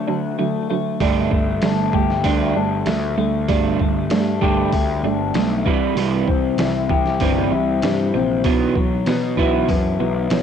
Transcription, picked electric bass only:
1.01 1.29 G1 medium
1.31 1.60 G1 medium
1.62 1.91 G1 medium
1.93 2.22 G1 medium
2.24 2.52 D2 medium
2.55 2.83 G1 medium
2.87 3.15 D2 medium
3.18 3.46 D2 medium
3.48 3.77 G1 medium
3.79 4.08 G1 medium
4.11 4.39 G2 medium
4.42 4.70 G1 medium
4.73 5.01 D2 medium
5.03 5.31 G1 medium
5.34 5.63 B1 medium
5.66 5.94 C2 medium
5.96 6.24 C2 loud
6.27 6.56 C2 medium
6.58 6.86 C2 medium
6.90 7.18 C2 medium
7.20 7.48 G1 medium
7.51 7.79 C2 medium
7.83 8.11 G2 medium
8.15 8.42 A#1 medium
8.45 8.73 B1 medium
8.76 9.04 B1 medium
9.07 9.35 B2 medium
9.37 9.65 B1 medium
9.69 9.97 F#2 medium
9.99 10.27 B1 medium
10.30 10.43 B1 medium

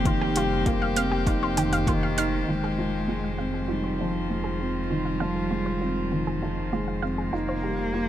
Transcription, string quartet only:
0.00 2.46 D#3 medium
0.00 3.30 A#3 medium
0.00 4.42 G4 medium
0.00 8.09 C5 medium
2.47 8.09 D#3 medium
2.98 7.33 F3 medium
3.47 8.09 F4 medium
7.67 8.09 G4 medium
7.85 8.09 A#3 medium

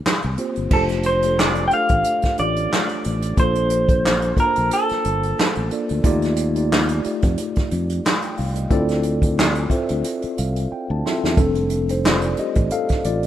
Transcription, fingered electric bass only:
0.06 muted fingered electric bass stroke soft
0.24 0.36 C2 medium
0.57 0.69 G1 medium
0.72 1.67 F1 medium
1.72 muted fingered electric bass stroke soft
1.91 2.02 A1 medium
2.25 muted fingered electric bass stroke soft
2.40 2.66 A1 medium
3.06 3.32 A1 medium
3.38 4.34 A#1 medium
4.37 muted fingered electric bass stroke soft
4.58 4.69 A#1 medium
4.91 muted fingered electric bass stroke soft
5.06 5.32 G1 medium
5.40 muted fingered electric bass stroke soft
5.57 5.69 A1 medium
5.91 6.02 D2 medium
6.05 7.00 D#2 loud
7.06 muted fingered electric bass stroke soft
7.24 7.36 F2 medium
7.58 muted fingered electric bass stroke medium
7.72 7.99 F2 medium
8.39 8.66 C2 medium
8.71 9.67 D2 medium
9.90 10.02 D2 medium
10.24 muted fingered electric bass stroke soft
10.39 10.65 C2 medium
10.72 muted fingered electric bass stroke soft
10.90 11.02 D2 medium
11.24 11.35 E2 medium
11.38 12.34 F1 loud
12.39 muted fingered electric bass stroke soft
12.57 12.69 A1 medium
12.91 muted fingered electric bass stroke soft
13.05 13.27 A1 medium

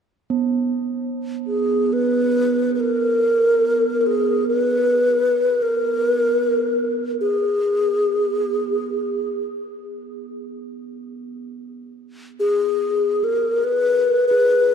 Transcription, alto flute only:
1.47 1.94 G#4 medium
1.93 2.73 B4 medium
2.75 2.81 B4 soft
2.80 4.01 A#4 medium
4.01 4.08 A#4 soft
4.06 4.47 G#4 medium
4.48 5.64 B4 medium
5.62 6.93 A#4 medium
7.21 9.44 G#4 medium
12.40 13.25 G#4 medium
13.24 13.65 A#4 medium
13.64 14.25 B4 medium
14.27 14.74 B4 medium

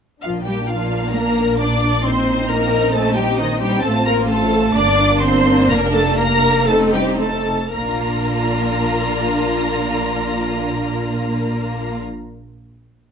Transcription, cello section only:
0.23 0.45 F3 medium
0.47 0.55 G3 medium
0.69 1.14 F3 medium
1.16 1.61 A#3 medium
1.60 2.04 D4 medium
2.05 2.50 C4 medium
2.51 2.94 A#3 medium
2.94 3.16 A3 medium
3.16 3.24 G3 medium
3.39 3.60 D#3 medium
3.61 3.83 G3 medium
3.84 4.06 A3 medium
4.07 4.29 A#3 medium
4.29 4.75 A3 medium
4.75 5.22 D4 medium
5.21 5.69 C4 medium
5.69 5.77 A#3 medium
5.94 6.18 A3 medium
6.18 6.67 A#3 medium
6.67 6.93 A3 medium
6.93 7.19 G3 medium
7.19 7.74 A3 medium
7.73 11.97 A#3 medium

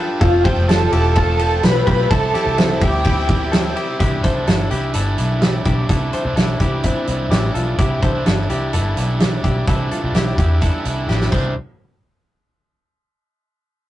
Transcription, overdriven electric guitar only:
0.00 0.22 D4 medium
0.00 0.21 G4 medium
0.00 0.21 B4 medium
0.20 0.43 F3 medium
0.20 0.44 A3 medium
0.20 0.44 C4 medium
0.20 0.45 F4 medium
0.44 0.80 F3 medium
0.44 0.79 A3 medium
0.44 0.79 C4 medium
0.44 0.78 F4 medium
0.80 1.14 F3 medium
0.80 1.15 A3 medium
0.80 1.16 C4 medium
0.80 1.15 F4 medium
1.15 1.38 F3 medium
1.15 1.39 A3 medium
1.15 1.39 C4 medium
1.15 1.40 F4 medium
1.39 1.75 F3 medium
1.39 1.75 A3 medium
1.39 1.73 C4 medium
1.39 1.72 F4 medium
1.74 2.10 A3 soft
1.74 2.10 C4 soft
1.74 2.10 F4 medium
2.09 2.32 E3 medium
2.09 2.33 G3 medium
2.09 2.34 C4 medium
2.09 2.34 E4 medium
2.33 2.69 E3 medium
2.33 2.69 G3 medium
2.33 2.69 C4 medium
2.33 2.68 E4 medium
2.69 3.06 C3 medium
2.69 3.04 E3 medium
2.69 3.05 G3 medium
2.69 3.05 C4 medium
2.69 3.05 E4 medium
3.05 3.28 E3 medium
3.05 3.28 G3 medium
3.05 3.29 C4 medium
3.05 3.30 E4 medium
3.29 3.64 E3 medium
3.29 3.64 G3 medium
3.29 3.64 C4 medium
3.29 3.63 E4 medium
3.64 3.99 G3 medium
3.64 4.00 C4 medium
3.64 3.99 E4 medium
4.00 4.35 C3 medium
4.00 4.35 E3 medium
4.00 4.35 G3 medium
4.00 4.34 D4 medium
4.00 4.33 E4 loud
4.34 4.69 G3 soft
4.34 4.70 D4 medium
4.34 4.70 E4 medium
4.70 4.93 E3 medium
4.70 4.94 G3 medium
4.70 4.95 D4 medium
4.70 4.95 E4 medium
4.94 5.16 E3 medium
4.94 5.17 G3 medium
4.94 5.18 D4 medium
4.94 5.18 E4 medium
5.17 5.41 E3 medium
5.17 5.41 G3 medium
5.17 5.42 D4 medium
5.17 5.42 E4 medium
5.42 5.89 E3 medium
5.42 5.90 G3 medium
5.42 5.90 D4 medium
5.42 5.90 E4 medium
5.89 6.25 C3 medium
5.89 6.25 E3 medium
5.89 6.25 G3 medium
5.89 6.25 D4 medium
5.89 6.23 E4 loud
6.24 6.60 G3 soft
6.24 6.61 D4 medium
6.24 6.60 E4 medium
6.60 6.83 E3 medium
6.60 6.83 G3 medium
6.60 6.84 D4 medium
6.60 6.85 E4 medium
6.84 7.06 E3 medium
6.84 7.07 G3 medium
6.84 7.08 D4 medium
6.84 7.08 E4 medium
7.07 7.29 E3 medium
7.07 7.30 G3 medium
7.07 7.31 D4 medium
7.07 7.32 E4 medium
7.30 7.77 E3 medium
7.30 7.78 G3 medium
7.30 7.78 D4 medium
7.30 7.79 E4 medium
7.78 8.13 C3 medium
7.78 8.13 E3 medium
7.78 8.14 G3 medium
7.78 8.14 D4 medium
7.78 8.12 E4 medium
8.13 8.49 G3 medium
8.13 8.49 D4 medium
8.13 8.49 E4 medium
8.49 8.72 E3 medium
8.49 8.73 G3 medium
8.49 8.73 D4 medium
8.49 8.74 E4 medium
8.73 8.96 E3 medium
8.73 8.96 G3 medium
8.73 8.97 D4 medium
8.73 8.97 E4 medium
8.97 9.19 E3 medium
8.97 9.20 G3 medium
8.97 9.20 D4 medium
8.97 9.21 E4 medium
9.20 9.67 E3 medium
9.20 9.68 G3 medium
9.20 9.68 D4 medium
9.20 9.68 E4 medium
9.67 10.03 C3 medium
9.67 10.03 E3 medium
9.67 10.02 G3 medium
9.67 10.01 D4 loud
9.67 10.00 E4 medium
10.01 10.38 G3 soft
10.01 10.38 D4 medium
10.01 10.37 E4 medium
10.38 10.59 E3 medium
10.38 10.60 G3 medium
10.38 10.61 D4 medium
10.38 10.62 E4 medium
10.61 10.83 E3 medium
10.61 10.85 G3 medium
10.61 10.85 D4 medium
10.61 10.86 E4 medium
10.85 11.07 E3 medium
10.85 11.08 G3 medium
10.85 11.09 D4 medium
10.85 11.10 E4 medium
11.08 11.32 E3 medium
11.08 11.32 G3 medium
11.08 11.33 D4 medium
11.08 11.33 E4 medium
11.31 11.51 C3 medium
11.31 11.51 E3 medium
11.31 11.51 G3 medium
11.31 11.52 D4 medium
11.31 11.52 E4 medium

